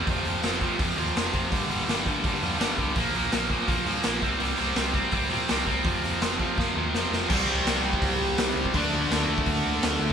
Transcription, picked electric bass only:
X:1
M:4/4
L:1/8
Q:1/4=166
K:Cdor
V:1 name="Picked electric bass" clef=bass
F,,, F,,, F,,,2 F,,, E,, F,,, F,,, | G,,, G,,, G,,,2 G,,, F,, G,,, C,, | B,,, B,,, B,,,2 B,,, G,, B,,, C,, | C,, C,, C,,2 C,, B,, C,, C,, |
F,,, F,,, F,,,2 F,,, E,, F,,, F,,, | C,, C,, C,, C,, C,, C,, C,, ^C,, | D,, D,, D,, D,, D,, D,, D,, D,, |]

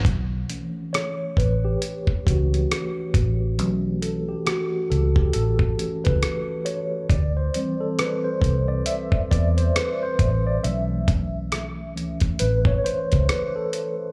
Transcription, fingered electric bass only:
X:1
M:4/4
L:1/16
Q:"Swing 16ths" 1/4=68
K:Dmix
V:1 name="Fingered electric bass" clef=bass
B,,,2 z4 A,,,2 z2 ^C,,2 z2 A,,,2 | B,,,4 z2 ^C,,2 A,,,2 z C,, z4 | D,,2 z4 C,,2 z2 E,,2 z2 A,,,2 | B,,,6 ^C,,2 A,,,2 z C,, z4 |]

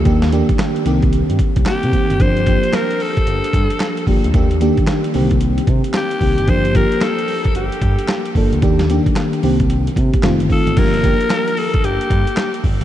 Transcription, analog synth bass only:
X:1
M:4/4
L:1/16
Q:"Swing 16ths" 1/4=112
K:Gm
V:1 name="Analog synth bass" clef=bass
E,,3 z3 C,,3 G,, z C,, z C, z ^F,,, | G,,,3 z4 z G,,, z G,, z3 G,,, D,, | E,,3 z3 C,,4 C, z3 C,, ^F,,, | G,,,3 z4 z G,,, z G,, z3 G,,, D,, |
E,,3 z3 C,,4 C, z F,,, G,,, z A,,, | G,,,3 z4 z G,,, z G,, z3 G,,, D,, |]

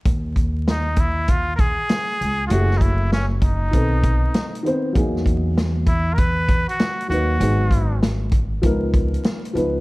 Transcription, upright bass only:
X:1
M:4/4
L:1/16
Q:"Swing 16ths" 1/4=98
K:Db
V:1 name="Upright bass" clef=bass
E,,8- E,,3 z3 D,,2 | G,,,8 =B,,,4 z4 | =E,,8- E,,3 z3 ^D,,2 | A,,,8 D,,4 z2 D,,2 |]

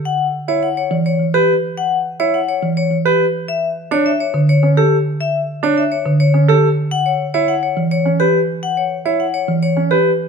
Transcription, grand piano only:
X:1
M:3/4
L:1/16
Q:1/4=105
K:Edor
V:1 name="Grand piano"
z3 E z4 z B z2 | z3 E z4 z B z2 | z3 D z4 C A z2 | z3 D z4 C A z2 |
z3 E z4 C B z2 | z3 E z4 C B z2 |]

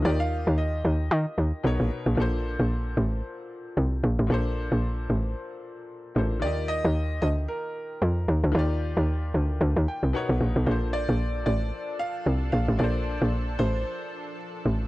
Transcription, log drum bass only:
X:1
M:4/4
L:1/16
Q:"Swing 16ths" 1/4=113
K:Bb
V:1 name="Log drum bass" clef=bass
E,,3 E,,3 E,,2 E, z E,, z =B,,, ^A,,, z A,,, | B,,,3 B,,,3 A,,,2 z4 C,,2 B,,, A,,, | B,,,3 B,,,3 A,,,2 z6 A,,,2 | E,,3 E,,3 D,,2 z4 F,,2 E,, D,, |
E,,3 E,,3 D,,2 D,, E,, z C,, z =B,,, ^A,,, B,,, | B,,,3 B,,,3 A,,,2 z4 C,,2 B,,, A,,, | B,,,3 B,,,3 A,,,2 z6 A,,,2 |]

